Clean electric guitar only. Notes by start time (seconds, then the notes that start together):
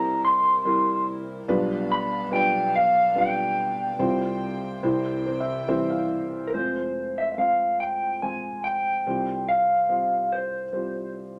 Already playing: A#5
0.25 C6
1.92 B5
2.33 G5
2.76 F5
3.18 G5
6.47 A#4
6.54 C5
7.18 E5
7.32 E5
7.38 F5
7.80 G5
8.22 G#5
8.64 G5
9.49 F5
10.32 C5